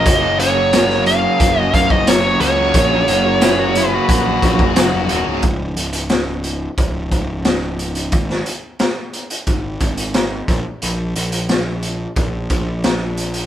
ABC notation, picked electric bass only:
X:1
M:4/4
L:1/16
Q:1/4=89
K:Gb
V:1 name="Picked electric bass" clef=bass
G,,,8 G,,,2 G,, G,,,3 D,,2 | B,,,2 G,,,6 B,,,2 B,,, G,,, G,,, F,,, E,,, D,,, | [K:Bbm] D,,,2 D,,,6 D,,,2 D,,,6 | A,,,2 z6 A,,,2 A,,,4 B,,, z |
B,,,2 B,,,6 B,,,2 B,,,6 |]